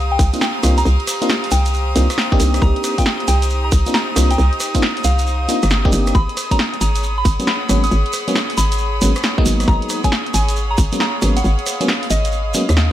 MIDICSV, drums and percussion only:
0, 0, Header, 1, 3, 480
1, 0, Start_track
1, 0, Key_signature, -3, "minor"
1, 0, Tempo, 441176
1, 930, Time_signature, 4, 2, 24, 8
1, 14057, End_track
2, 0, Start_track
2, 0, Title_t, "Shekere"
2, 215, Note_on_c, 9, 82, 97
2, 324, Note_off_c, 9, 82, 0
2, 360, Note_on_c, 9, 82, 53
2, 451, Note_off_c, 9, 82, 0
2, 451, Note_on_c, 9, 82, 43
2, 560, Note_off_c, 9, 82, 0
2, 689, Note_on_c, 9, 82, 103
2, 798, Note_off_c, 9, 82, 0
2, 846, Note_on_c, 9, 82, 58
2, 933, Note_off_c, 9, 82, 0
2, 933, Note_on_c, 9, 82, 41
2, 1042, Note_off_c, 9, 82, 0
2, 1170, Note_on_c, 9, 82, 103
2, 1279, Note_off_c, 9, 82, 0
2, 1325, Note_on_c, 9, 82, 60
2, 1405, Note_off_c, 9, 82, 0
2, 1405, Note_on_c, 9, 82, 43
2, 1514, Note_off_c, 9, 82, 0
2, 1643, Note_on_c, 9, 82, 110
2, 1752, Note_off_c, 9, 82, 0
2, 1800, Note_on_c, 9, 82, 59
2, 1890, Note_off_c, 9, 82, 0
2, 1890, Note_on_c, 9, 82, 44
2, 1999, Note_off_c, 9, 82, 0
2, 2133, Note_on_c, 9, 82, 91
2, 2242, Note_off_c, 9, 82, 0
2, 2289, Note_on_c, 9, 82, 55
2, 2376, Note_off_c, 9, 82, 0
2, 2376, Note_on_c, 9, 82, 45
2, 2485, Note_off_c, 9, 82, 0
2, 2611, Note_on_c, 9, 82, 104
2, 2719, Note_off_c, 9, 82, 0
2, 2775, Note_on_c, 9, 82, 49
2, 2849, Note_off_c, 9, 82, 0
2, 2849, Note_on_c, 9, 82, 42
2, 2958, Note_off_c, 9, 82, 0
2, 3087, Note_on_c, 9, 82, 108
2, 3196, Note_off_c, 9, 82, 0
2, 3253, Note_on_c, 9, 82, 58
2, 3330, Note_off_c, 9, 82, 0
2, 3330, Note_on_c, 9, 82, 40
2, 3439, Note_off_c, 9, 82, 0
2, 3565, Note_on_c, 9, 82, 105
2, 3674, Note_off_c, 9, 82, 0
2, 3725, Note_on_c, 9, 82, 58
2, 3805, Note_off_c, 9, 82, 0
2, 3805, Note_on_c, 9, 82, 42
2, 3914, Note_off_c, 9, 82, 0
2, 4046, Note_on_c, 9, 82, 88
2, 4155, Note_off_c, 9, 82, 0
2, 4203, Note_on_c, 9, 82, 60
2, 4291, Note_off_c, 9, 82, 0
2, 4291, Note_on_c, 9, 82, 41
2, 4400, Note_off_c, 9, 82, 0
2, 4533, Note_on_c, 9, 82, 105
2, 4641, Note_off_c, 9, 82, 0
2, 4692, Note_on_c, 9, 82, 56
2, 4773, Note_off_c, 9, 82, 0
2, 4773, Note_on_c, 9, 82, 42
2, 4882, Note_off_c, 9, 82, 0
2, 5006, Note_on_c, 9, 82, 97
2, 5114, Note_off_c, 9, 82, 0
2, 5167, Note_on_c, 9, 82, 56
2, 5243, Note_off_c, 9, 82, 0
2, 5243, Note_on_c, 9, 82, 42
2, 5352, Note_off_c, 9, 82, 0
2, 5485, Note_on_c, 9, 82, 102
2, 5594, Note_off_c, 9, 82, 0
2, 5641, Note_on_c, 9, 82, 57
2, 5733, Note_off_c, 9, 82, 0
2, 5733, Note_on_c, 9, 82, 41
2, 5842, Note_off_c, 9, 82, 0
2, 5971, Note_on_c, 9, 82, 85
2, 6080, Note_off_c, 9, 82, 0
2, 6120, Note_on_c, 9, 82, 51
2, 6202, Note_off_c, 9, 82, 0
2, 6202, Note_on_c, 9, 82, 44
2, 6311, Note_off_c, 9, 82, 0
2, 6444, Note_on_c, 9, 82, 93
2, 6553, Note_off_c, 9, 82, 0
2, 6600, Note_on_c, 9, 82, 54
2, 6691, Note_off_c, 9, 82, 0
2, 6691, Note_on_c, 9, 82, 38
2, 6799, Note_off_c, 9, 82, 0
2, 6935, Note_on_c, 9, 82, 88
2, 7044, Note_off_c, 9, 82, 0
2, 7087, Note_on_c, 9, 82, 55
2, 7169, Note_off_c, 9, 82, 0
2, 7169, Note_on_c, 9, 82, 36
2, 7278, Note_off_c, 9, 82, 0
2, 7411, Note_on_c, 9, 82, 101
2, 7519, Note_off_c, 9, 82, 0
2, 7565, Note_on_c, 9, 82, 60
2, 7651, Note_off_c, 9, 82, 0
2, 7651, Note_on_c, 9, 82, 43
2, 7760, Note_off_c, 9, 82, 0
2, 7891, Note_on_c, 9, 82, 93
2, 8000, Note_off_c, 9, 82, 0
2, 8049, Note_on_c, 9, 82, 53
2, 8126, Note_off_c, 9, 82, 0
2, 8126, Note_on_c, 9, 82, 37
2, 8235, Note_off_c, 9, 82, 0
2, 8373, Note_on_c, 9, 82, 95
2, 8482, Note_off_c, 9, 82, 0
2, 8528, Note_on_c, 9, 82, 54
2, 8609, Note_off_c, 9, 82, 0
2, 8609, Note_on_c, 9, 82, 37
2, 8718, Note_off_c, 9, 82, 0
2, 8844, Note_on_c, 9, 82, 94
2, 8953, Note_off_c, 9, 82, 0
2, 9008, Note_on_c, 9, 82, 54
2, 9090, Note_off_c, 9, 82, 0
2, 9090, Note_on_c, 9, 82, 38
2, 9199, Note_off_c, 9, 82, 0
2, 9330, Note_on_c, 9, 82, 96
2, 9439, Note_off_c, 9, 82, 0
2, 9486, Note_on_c, 9, 82, 55
2, 9557, Note_off_c, 9, 82, 0
2, 9557, Note_on_c, 9, 82, 36
2, 9666, Note_off_c, 9, 82, 0
2, 9808, Note_on_c, 9, 82, 90
2, 9916, Note_off_c, 9, 82, 0
2, 9958, Note_on_c, 9, 82, 53
2, 10045, Note_off_c, 9, 82, 0
2, 10045, Note_on_c, 9, 82, 38
2, 10153, Note_off_c, 9, 82, 0
2, 10290, Note_on_c, 9, 82, 96
2, 10398, Note_off_c, 9, 82, 0
2, 10451, Note_on_c, 9, 82, 49
2, 10528, Note_off_c, 9, 82, 0
2, 10528, Note_on_c, 9, 82, 37
2, 10637, Note_off_c, 9, 82, 0
2, 10764, Note_on_c, 9, 82, 93
2, 10873, Note_off_c, 9, 82, 0
2, 10924, Note_on_c, 9, 82, 50
2, 11012, Note_off_c, 9, 82, 0
2, 11012, Note_on_c, 9, 82, 35
2, 11121, Note_off_c, 9, 82, 0
2, 11250, Note_on_c, 9, 82, 89
2, 11358, Note_off_c, 9, 82, 0
2, 11412, Note_on_c, 9, 82, 57
2, 11492, Note_off_c, 9, 82, 0
2, 11492, Note_on_c, 9, 82, 39
2, 11601, Note_off_c, 9, 82, 0
2, 11725, Note_on_c, 9, 82, 90
2, 11834, Note_off_c, 9, 82, 0
2, 11886, Note_on_c, 9, 82, 52
2, 11973, Note_off_c, 9, 82, 0
2, 11973, Note_on_c, 9, 82, 35
2, 12082, Note_off_c, 9, 82, 0
2, 12206, Note_on_c, 9, 82, 91
2, 12314, Note_off_c, 9, 82, 0
2, 12369, Note_on_c, 9, 82, 54
2, 12453, Note_off_c, 9, 82, 0
2, 12453, Note_on_c, 9, 82, 38
2, 12562, Note_off_c, 9, 82, 0
2, 12691, Note_on_c, 9, 82, 89
2, 12800, Note_off_c, 9, 82, 0
2, 12850, Note_on_c, 9, 82, 59
2, 12925, Note_off_c, 9, 82, 0
2, 12925, Note_on_c, 9, 82, 35
2, 13033, Note_off_c, 9, 82, 0
2, 13169, Note_on_c, 9, 82, 87
2, 13278, Note_off_c, 9, 82, 0
2, 13328, Note_on_c, 9, 82, 54
2, 13406, Note_off_c, 9, 82, 0
2, 13406, Note_on_c, 9, 82, 38
2, 13514, Note_off_c, 9, 82, 0
2, 13642, Note_on_c, 9, 82, 95
2, 13751, Note_off_c, 9, 82, 0
2, 13811, Note_on_c, 9, 82, 49
2, 13890, Note_off_c, 9, 82, 0
2, 13890, Note_on_c, 9, 82, 37
2, 13999, Note_off_c, 9, 82, 0
2, 14057, End_track
3, 0, Start_track
3, 0, Title_t, "Drums"
3, 208, Note_on_c, 9, 36, 106
3, 209, Note_on_c, 9, 46, 109
3, 317, Note_off_c, 9, 36, 0
3, 317, Note_off_c, 9, 46, 0
3, 366, Note_on_c, 9, 42, 68
3, 449, Note_on_c, 9, 38, 121
3, 475, Note_off_c, 9, 42, 0
3, 558, Note_off_c, 9, 38, 0
3, 690, Note_on_c, 9, 37, 63
3, 690, Note_on_c, 9, 46, 115
3, 798, Note_off_c, 9, 37, 0
3, 798, Note_off_c, 9, 46, 0
3, 846, Note_on_c, 9, 42, 68
3, 955, Note_off_c, 9, 42, 0
3, 1086, Note_on_c, 9, 42, 37
3, 1169, Note_on_c, 9, 37, 57
3, 1169, Note_on_c, 9, 46, 106
3, 1195, Note_off_c, 9, 42, 0
3, 1278, Note_off_c, 9, 37, 0
3, 1278, Note_off_c, 9, 46, 0
3, 1326, Note_on_c, 9, 42, 64
3, 1409, Note_on_c, 9, 38, 127
3, 1435, Note_off_c, 9, 42, 0
3, 1518, Note_off_c, 9, 38, 0
3, 1566, Note_on_c, 9, 46, 62
3, 1649, Note_off_c, 9, 46, 0
3, 1649, Note_on_c, 9, 46, 111
3, 1758, Note_off_c, 9, 46, 0
3, 1805, Note_on_c, 9, 42, 65
3, 1914, Note_off_c, 9, 42, 0
3, 2129, Note_on_c, 9, 46, 109
3, 2237, Note_off_c, 9, 46, 0
3, 2285, Note_on_c, 9, 37, 71
3, 2285, Note_on_c, 9, 42, 65
3, 2369, Note_on_c, 9, 38, 125
3, 2394, Note_off_c, 9, 37, 0
3, 2394, Note_off_c, 9, 42, 0
3, 2478, Note_off_c, 9, 38, 0
3, 2525, Note_on_c, 9, 36, 115
3, 2608, Note_on_c, 9, 46, 109
3, 2634, Note_off_c, 9, 36, 0
3, 2717, Note_off_c, 9, 46, 0
3, 2765, Note_on_c, 9, 37, 58
3, 2765, Note_on_c, 9, 42, 67
3, 2848, Note_on_c, 9, 36, 125
3, 2874, Note_off_c, 9, 37, 0
3, 2874, Note_off_c, 9, 42, 0
3, 2957, Note_off_c, 9, 36, 0
3, 3005, Note_on_c, 9, 42, 36
3, 3089, Note_on_c, 9, 37, 56
3, 3089, Note_on_c, 9, 46, 105
3, 3114, Note_off_c, 9, 42, 0
3, 3197, Note_off_c, 9, 37, 0
3, 3197, Note_off_c, 9, 46, 0
3, 3245, Note_on_c, 9, 36, 67
3, 3245, Note_on_c, 9, 42, 66
3, 3327, Note_on_c, 9, 38, 127
3, 3354, Note_off_c, 9, 36, 0
3, 3354, Note_off_c, 9, 42, 0
3, 3436, Note_off_c, 9, 38, 0
3, 3485, Note_on_c, 9, 42, 35
3, 3568, Note_on_c, 9, 46, 109
3, 3593, Note_off_c, 9, 42, 0
3, 3676, Note_off_c, 9, 46, 0
3, 3724, Note_on_c, 9, 42, 66
3, 3833, Note_off_c, 9, 42, 0
3, 4047, Note_on_c, 9, 46, 104
3, 4049, Note_on_c, 9, 36, 112
3, 4156, Note_off_c, 9, 46, 0
3, 4157, Note_off_c, 9, 36, 0
3, 4204, Note_on_c, 9, 42, 62
3, 4288, Note_on_c, 9, 38, 124
3, 4313, Note_off_c, 9, 42, 0
3, 4397, Note_off_c, 9, 38, 0
3, 4529, Note_on_c, 9, 37, 59
3, 4529, Note_on_c, 9, 46, 108
3, 4637, Note_off_c, 9, 37, 0
3, 4637, Note_off_c, 9, 46, 0
3, 4684, Note_on_c, 9, 42, 65
3, 4793, Note_off_c, 9, 42, 0
3, 4925, Note_on_c, 9, 42, 35
3, 5008, Note_on_c, 9, 37, 53
3, 5008, Note_on_c, 9, 46, 106
3, 5034, Note_off_c, 9, 42, 0
3, 5117, Note_off_c, 9, 37, 0
3, 5117, Note_off_c, 9, 46, 0
3, 5165, Note_on_c, 9, 36, 64
3, 5165, Note_on_c, 9, 42, 68
3, 5248, Note_on_c, 9, 38, 127
3, 5274, Note_off_c, 9, 36, 0
3, 5274, Note_off_c, 9, 42, 0
3, 5357, Note_off_c, 9, 38, 0
3, 5406, Note_on_c, 9, 46, 59
3, 5489, Note_off_c, 9, 46, 0
3, 5489, Note_on_c, 9, 46, 100
3, 5597, Note_off_c, 9, 46, 0
3, 5647, Note_on_c, 9, 42, 67
3, 5756, Note_off_c, 9, 42, 0
3, 5970, Note_on_c, 9, 46, 103
3, 6079, Note_off_c, 9, 46, 0
3, 6127, Note_on_c, 9, 37, 65
3, 6127, Note_on_c, 9, 42, 65
3, 6210, Note_on_c, 9, 38, 127
3, 6236, Note_off_c, 9, 37, 0
3, 6236, Note_off_c, 9, 42, 0
3, 6319, Note_off_c, 9, 38, 0
3, 6366, Note_on_c, 9, 36, 115
3, 6449, Note_on_c, 9, 46, 105
3, 6475, Note_off_c, 9, 36, 0
3, 6558, Note_off_c, 9, 46, 0
3, 6608, Note_on_c, 9, 37, 54
3, 6608, Note_on_c, 9, 42, 67
3, 6689, Note_on_c, 9, 36, 122
3, 6716, Note_off_c, 9, 37, 0
3, 6716, Note_off_c, 9, 42, 0
3, 6798, Note_off_c, 9, 36, 0
3, 6847, Note_on_c, 9, 42, 38
3, 6930, Note_on_c, 9, 37, 51
3, 6930, Note_on_c, 9, 46, 105
3, 6956, Note_off_c, 9, 42, 0
3, 7039, Note_off_c, 9, 37, 0
3, 7039, Note_off_c, 9, 46, 0
3, 7086, Note_on_c, 9, 36, 62
3, 7088, Note_on_c, 9, 42, 66
3, 7171, Note_on_c, 9, 38, 121
3, 7195, Note_off_c, 9, 36, 0
3, 7196, Note_off_c, 9, 42, 0
3, 7280, Note_off_c, 9, 38, 0
3, 7329, Note_on_c, 9, 42, 39
3, 7411, Note_on_c, 9, 46, 104
3, 7437, Note_off_c, 9, 42, 0
3, 7520, Note_off_c, 9, 46, 0
3, 7567, Note_on_c, 9, 42, 67
3, 7676, Note_off_c, 9, 42, 0
3, 7889, Note_on_c, 9, 36, 107
3, 7890, Note_on_c, 9, 46, 105
3, 7998, Note_off_c, 9, 36, 0
3, 7999, Note_off_c, 9, 46, 0
3, 8048, Note_on_c, 9, 42, 70
3, 8130, Note_on_c, 9, 38, 121
3, 8156, Note_off_c, 9, 42, 0
3, 8239, Note_off_c, 9, 38, 0
3, 8370, Note_on_c, 9, 37, 55
3, 8370, Note_on_c, 9, 46, 107
3, 8479, Note_off_c, 9, 37, 0
3, 8479, Note_off_c, 9, 46, 0
3, 8527, Note_on_c, 9, 42, 69
3, 8636, Note_off_c, 9, 42, 0
3, 8767, Note_on_c, 9, 42, 39
3, 8850, Note_on_c, 9, 37, 52
3, 8850, Note_on_c, 9, 46, 105
3, 8876, Note_off_c, 9, 42, 0
3, 8959, Note_off_c, 9, 37, 0
3, 8959, Note_off_c, 9, 46, 0
3, 9007, Note_on_c, 9, 42, 70
3, 9090, Note_on_c, 9, 38, 118
3, 9115, Note_off_c, 9, 42, 0
3, 9199, Note_off_c, 9, 38, 0
3, 9247, Note_on_c, 9, 46, 63
3, 9330, Note_off_c, 9, 46, 0
3, 9330, Note_on_c, 9, 46, 108
3, 9439, Note_off_c, 9, 46, 0
3, 9486, Note_on_c, 9, 42, 71
3, 9595, Note_off_c, 9, 42, 0
3, 9810, Note_on_c, 9, 46, 107
3, 9918, Note_off_c, 9, 46, 0
3, 9966, Note_on_c, 9, 37, 66
3, 9966, Note_on_c, 9, 42, 71
3, 10050, Note_on_c, 9, 38, 115
3, 10075, Note_off_c, 9, 37, 0
3, 10075, Note_off_c, 9, 42, 0
3, 10159, Note_off_c, 9, 38, 0
3, 10206, Note_on_c, 9, 36, 103
3, 10290, Note_on_c, 9, 46, 111
3, 10315, Note_off_c, 9, 36, 0
3, 10398, Note_off_c, 9, 46, 0
3, 10446, Note_on_c, 9, 37, 52
3, 10446, Note_on_c, 9, 42, 69
3, 10529, Note_on_c, 9, 36, 118
3, 10555, Note_off_c, 9, 37, 0
3, 10555, Note_off_c, 9, 42, 0
3, 10638, Note_off_c, 9, 36, 0
3, 10687, Note_on_c, 9, 42, 40
3, 10770, Note_on_c, 9, 37, 52
3, 10770, Note_on_c, 9, 46, 110
3, 10796, Note_off_c, 9, 42, 0
3, 10879, Note_off_c, 9, 37, 0
3, 10879, Note_off_c, 9, 46, 0
3, 10926, Note_on_c, 9, 36, 61
3, 10928, Note_on_c, 9, 42, 73
3, 11010, Note_on_c, 9, 38, 117
3, 11034, Note_off_c, 9, 36, 0
3, 11036, Note_off_c, 9, 42, 0
3, 11119, Note_off_c, 9, 38, 0
3, 11168, Note_on_c, 9, 42, 40
3, 11251, Note_on_c, 9, 46, 110
3, 11276, Note_off_c, 9, 42, 0
3, 11360, Note_off_c, 9, 46, 0
3, 11408, Note_on_c, 9, 42, 71
3, 11516, Note_off_c, 9, 42, 0
3, 11729, Note_on_c, 9, 36, 102
3, 11730, Note_on_c, 9, 46, 112
3, 11838, Note_off_c, 9, 36, 0
3, 11839, Note_off_c, 9, 46, 0
3, 11887, Note_on_c, 9, 42, 70
3, 11971, Note_on_c, 9, 38, 115
3, 11996, Note_off_c, 9, 42, 0
3, 12079, Note_off_c, 9, 38, 0
3, 12211, Note_on_c, 9, 37, 59
3, 12211, Note_on_c, 9, 46, 114
3, 12319, Note_off_c, 9, 37, 0
3, 12319, Note_off_c, 9, 46, 0
3, 12367, Note_on_c, 9, 42, 71
3, 12475, Note_off_c, 9, 42, 0
3, 12608, Note_on_c, 9, 42, 38
3, 12691, Note_on_c, 9, 37, 54
3, 12691, Note_on_c, 9, 46, 116
3, 12716, Note_off_c, 9, 42, 0
3, 12800, Note_off_c, 9, 37, 0
3, 12800, Note_off_c, 9, 46, 0
3, 12848, Note_on_c, 9, 42, 69
3, 12930, Note_on_c, 9, 38, 121
3, 12957, Note_off_c, 9, 42, 0
3, 13039, Note_off_c, 9, 38, 0
3, 13087, Note_on_c, 9, 46, 63
3, 13171, Note_off_c, 9, 46, 0
3, 13171, Note_on_c, 9, 46, 119
3, 13280, Note_off_c, 9, 46, 0
3, 13327, Note_on_c, 9, 42, 73
3, 13436, Note_off_c, 9, 42, 0
3, 13650, Note_on_c, 9, 46, 110
3, 13759, Note_off_c, 9, 46, 0
3, 13807, Note_on_c, 9, 37, 69
3, 13807, Note_on_c, 9, 42, 70
3, 13891, Note_on_c, 9, 38, 121
3, 13916, Note_off_c, 9, 37, 0
3, 13916, Note_off_c, 9, 42, 0
3, 14000, Note_off_c, 9, 38, 0
3, 14057, End_track
0, 0, End_of_file